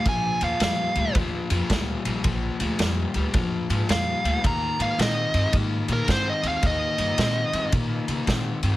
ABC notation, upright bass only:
X:1
M:4/4
L:1/8
Q:"Swing" 1/4=110
K:Bbmix
V:1 name="Upright bass" clef=bass
B,,, E,, F,, D,, E,, F,, D,, B,,, | B,,, D,, F,, D,, F,, A,, F,, D,, | E,, A,, B,, G,, A,, B,, G,, E,, | E,, G,, B,, G,, B,, _D, B,, G,, |]